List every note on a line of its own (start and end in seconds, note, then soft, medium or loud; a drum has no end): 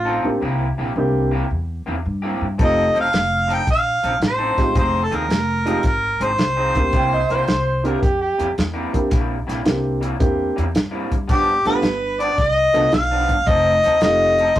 0.00 0.19 A1 medium
0.00 0.40 F4 loud
0.05 0.27 F3 medium
0.05 0.27 C4 medium
0.05 0.27 D#4 medium
0.05 0.27 A4 medium
0.24 0.39 A1 medium
0.24 0.40 A#3 medium
0.24 0.40 C4 medium
0.24 0.40 D4 medium
0.24 0.40 E4 medium
0.24 0.41 G4 medium
0.41 0.72 C2 medium
0.41 0.65 C3 medium
0.41 0.66 A#3 medium
0.41 0.66 E4 medium
0.41 0.66 G4 medium
0.78 0.93 A#1 medium
0.78 0.90 C3 medium
0.78 0.90 A#3 medium
0.78 0.90 E4 medium
0.78 0.90 G4 medium
0.95 1.41 C2 medium
0.95 1.30 A#3 medium
0.95 1.30 C4 medium
0.95 1.30 D4 medium
0.95 1.30 E4 medium
0.95 1.30 G4 medium
0.95 muted clean electric guitar stroke soft
1.31 1.43 C3 medium
1.31 1.43 A#3 medium
1.31 1.44 E4 medium
1.31 1.44 G4 medium
1.51 1.81 E2 medium
1.86 2.02 E2 medium
1.86 1.95 C3 medium
1.86 1.95 A#3 loud
1.86 1.95 E4 loud
1.86 1.94 G4 medium
1.96 muted clean electric guitar stroke soft
2.06 2.35 G2 medium
2.22 2.44 C3 medium
2.22 2.44 A#3 medium
2.22 2.44 E4 medium
2.22 2.43 G4 medium
2.41 2.56 G2 medium
2.58 2.89 F1 medium
2.58 2.82 F3 medium
2.58 2.92 A3 medium
2.58 2.83 C4 medium
2.58 2.92 C4 medium
2.58 2.83 D#4 medium
2.58 2.92 D#4 medium
2.58 2.92 F4 medium
2.58 2.92 G4 medium
2.58 2.83 A4 medium
2.58 kick loud
2.58 closed hi-hat medium
2.64 2.96 D#5 medium
2.93 3.10 F1 medium
2.93 3.06 F3 medium
2.93 3.06 C4 medium
2.93 3.07 D#4 medium
2.93 3.07 A4 medium
2.93 closed hi-hat soft
3.00 3.55 F5 loud
3.12 3.58 F1 medium
3.12 muted clean electric guitar stroke soft
3.12 snare loud
3.12 closed hi-hat medium
3.47 3.60 F3 medium
3.47 3.60 C4 medium
3.47 3.61 D#4 medium
3.47 3.61 A4 medium
3.47 closed hi-hat medium
3.53 3.69 G5 medium
3.67 3.98 A#1 medium
3.67 4.20 F5 loud
3.67 kick medium
3.67 closed hi-hat medium
4.03 4.19 A#1 medium
4.03 4.12 F3 medium
4.03 4.12 C4 medium
4.03 4.11 D#4 medium
4.03 4.11 A4 loud
4.03 closed hi-hat medium
4.12 muted clean electric guitar stroke soft
4.20 4.51 A1 medium
4.20 snare loud
4.20 closed hi-hat medium
4.25 4.74 C5 medium
4.38 4.61 F3 medium
4.38 4.60 C4 medium
4.38 4.60 D#4 medium
4.38 4.60 A4 loud
4.58 4.77 A1 medium
4.58 4.74 G#3 medium
4.58 4.74 C4 medium
4.58 4.74 D#4 medium
4.58 4.74 F4 medium
4.58 4.74 G4 medium
4.58 kick medium
4.58 snare soft
4.58 closed hi-hat medium
4.75 5.06 F1 medium
4.75 4.99 F3 medium
4.75 5.00 C4 medium
4.75 5.00 D#4 medium
4.75 5.00 G#4 medium
4.75 5.05 C5 medium
4.75 kick loud
4.75 closed hi-hat medium
5.04 5.16 A4 medium
5.11 5.27 D#2 medium
5.11 5.23 F3 medium
5.11 5.23 C4 medium
5.11 5.23 D#4 medium
5.11 5.24 G#4 medium
5.11 5.85 A#4 medium
5.11 closed hi-hat medium
5.29 5.74 F1 medium
5.29 muted clean electric guitar stroke soft
5.29 snare loud
5.29 closed hi-hat medium
5.65 5.78 F3 medium
5.65 5.82 G#3 medium
5.65 5.78 C4 medium
5.65 5.83 C4 medium
5.65 5.82 D#4 medium
5.65 5.78 D#4 medium
5.65 5.83 F4 medium
5.65 5.83 G4 medium
5.65 5.78 G#4 medium
5.65 closed hi-hat medium
5.83 6.14 G#1 medium
5.83 6.24 A#4 medium
5.83 kick loud
5.83 snare soft
5.83 closed hi-hat medium
6.20 6.35 G#1 medium
6.20 6.30 F3 medium
6.20 6.29 C4 medium
6.20 6.28 D#4 medium
6.20 6.28 G#4 loud
6.20 7.85 C5 medium
6.20 closed hi-hat medium
6.29 muted clean electric guitar stroke soft
6.38 6.69 C2 medium
6.38 snare loud
6.38 closed hi-hat medium
6.57 6.79 F3 medium
6.57 6.78 C4 medium
6.57 6.78 D#4 medium
6.57 6.78 G#4 loud
6.75 6.90 D2 medium
6.75 6.92 A#3 medium
6.75 6.92 C4 medium
6.75 6.92 D4 medium
6.75 6.92 E4 medium
6.75 6.93 G4 medium
6.75 kick medium
6.75 closed hi-hat medium
6.93 7.24 C2 loud
6.93 7.17 C3 medium
6.93 7.18 G3 medium
6.93 7.18 A#3 medium
6.93 7.18 E4 medium
6.93 kick loud
6.93 closed hi-hat medium
6.97 7.13 G5 medium
7.13 7.30 D#5 medium
7.30 7.45 C2 medium
7.30 7.41 C3 medium
7.30 7.42 G3 medium
7.30 7.42 A#3 medium
7.30 7.42 E4 medium
7.30 7.87 C5 medium
7.30 closed hi-hat medium
7.48 7.93 C2 medium
7.48 muted clean electric guitar stroke soft
7.48 snare loud
7.48 closed hi-hat medium
7.84 7.96 C3 medium
7.84 7.97 G3 medium
7.84 8.00 A#3 medium
7.84 7.97 A#3 medium
7.84 8.01 C4 medium
7.84 8.00 D4 medium
7.84 8.00 E4 medium
7.84 7.97 E4 medium
7.84 8.01 G4 medium
7.84 8.03 A#4 medium
7.84 closed hi-hat medium
8.03 8.33 F2 medium
8.03 8.21 G4 medium
8.03 kick loud
8.03 closed hi-hat medium
8.21 8.50 G4 medium
8.38 8.54 F2 medium
8.38 8.48 C3 medium
8.38 8.46 G3 medium
8.38 8.46 A#3 loud
8.38 8.46 E4 loud
8.38 closed hi-hat medium
8.47 muted clean electric guitar stroke soft
8.58 8.88 E2 medium
8.58 snare loud
8.58 closed hi-hat medium
8.74 8.96 C3 medium
8.74 8.96 G3 medium
8.74 8.96 A#3 medium
8.74 8.96 E4 medium
8.93 9.08 E2 medium
8.93 9.09 A#3 medium
8.93 9.09 C4 medium
8.93 9.10 D4 medium
8.93 9.10 E4 medium
8.93 9.10 G4 medium
8.93 kick medium
8.93 closed hi-hat medium
9.10 9.42 A#1 medium
9.10 9.35 C3 medium
9.10 9.35 G3 medium
9.10 9.35 A#3 medium
9.10 9.35 E4 medium
9.10 kick loud
9.10 snare soft
9.10 closed hi-hat medium
9.47 9.63 A#1 medium
9.47 9.59 C3 medium
9.47 9.59 G3 medium
9.47 9.60 A#3 medium
9.47 9.60 E4 medium
9.47 snare soft
9.47 closed hi-hat medium
9.65 10.11 C2 medium
9.65 9.99 A#3 medium
9.65 9.98 C4 medium
9.65 9.99 D4 medium
9.65 9.99 E4 medium
9.65 9.99 G4 medium
9.65 muted clean electric guitar stroke soft
9.65 snare loud
9.65 closed hi-hat medium
10.01 10.13 C3 medium
10.01 10.13 G3 medium
10.01 10.14 A#3 medium
10.01 10.14 E4 medium
10.01 closed hi-hat medium
10.19 10.51 E2 medium
10.19 10.53 A#3 medium
10.19 10.53 C4 medium
10.19 10.53 D4 medium
10.19 10.53 E4 medium
10.19 10.54 G4 medium
10.19 kick medium
10.19 closed hi-hat medium
10.56 10.72 E2 medium
10.56 10.66 C3 loud
10.56 10.64 G3 medium
10.56 10.64 A#3 medium
10.56 10.64 E4 loud
10.56 closed hi-hat medium
10.65 muted clean electric guitar stroke soft
10.75 11.06 G2 medium
10.75 snare loud
10.75 closed hi-hat medium
10.91 11.14 C3 medium
10.91 11.14 G3 medium
10.91 11.13 A#3 medium
10.91 11.13 E4 medium
11.11 11.26 G2 medium
11.11 kick medium
11.11 closed hi-hat medium
11.28 11.60 G1 medium
11.28 11.52 G2 medium
11.28 11.52 F3 medium
11.28 11.53 B3 medium
11.28 11.53 D4 medium
11.28 11.64 G4 medium
11.28 kick loud
11.28 closed hi-hat medium
11.64 11.81 G1 medium
11.64 11.77 G2 medium
11.64 11.77 F3 medium
11.64 11.82 A3 medium
11.64 11.77 B3 medium
11.64 11.82 B3 medium
11.64 11.78 D4 medium
11.64 11.82 D4 medium
11.64 11.82 F4 medium
11.64 11.82 G4 medium
11.64 12.21 B4 medium
11.64 closed hi-hat medium
11.82 12.29 G1 medium
11.82 muted clean electric guitar stroke soft
11.82 snare loud
11.82 closed hi-hat medium
12.20 12.32 G2 medium
12.20 12.32 F3 medium
12.20 12.32 B3 medium
12.20 12.32 D4 medium
12.20 12.38 D5 loud
12.20 closed hi-hat medium
12.38 12.68 C2 medium
12.38 12.49 D5 medium
12.38 kick medium
12.38 snare soft
12.38 closed hi-hat medium
12.49 12.93 D#5 medium
12.73 12.89 C2 medium
12.73 12.83 G2 medium
12.73 12.83 F3 loud
12.73 12.91 A3 medium
12.73 12.91 B3 medium
12.73 12.83 B3 loud
12.73 12.82 D4 loud
12.73 12.91 D4 medium
12.73 12.91 F4 medium
12.73 12.91 A4 medium
12.73 closed hi-hat medium
12.83 muted clean electric guitar stroke medium
12.92 13.23 B1 medium
12.92 13.50 F5 loud
12.92 snare loud
12.92 closed hi-hat medium
13.11 13.33 G2 medium
13.11 13.33 F3 medium
13.11 13.33 B3 medium
13.11 13.32 D4 medium
13.29 13.44 G1 medium
13.29 kick medium
13.29 closed hi-hat medium
13.47 13.77 F1 medium
13.47 13.71 F3 medium
13.47 13.71 C4 medium
13.47 13.72 D#4 medium
13.47 13.72 A4 medium
13.47 14.02 D#5 loud
13.47 kick loud
13.47 closed hi-hat medium
13.83 14.00 D#2 medium
13.83 13.95 F3 medium
13.83 13.95 C4 medium
13.83 13.96 D#4 medium
13.83 13.96 A4 medium
13.83 snare soft
13.83 closed hi-hat medium
14.01 14.47 F1 medium
14.01 14.35 A3 medium
14.01 14.35 C4 medium
14.01 14.35 D#4 medium
14.01 14.35 F4 medium
14.01 14.36 G4 medium
14.01 14.59 D#5 loud
14.01 muted clean electric guitar stroke soft
14.01 snare loud
14.01 closed hi-hat medium
14.38 14.51 F3 medium
14.38 14.51 C4 medium
14.38 14.51 D#4 medium
14.38 14.51 A4 medium
14.38 closed hi-hat medium
14.55 14.60 A1 medium
14.55 kick loud
14.55 closed hi-hat medium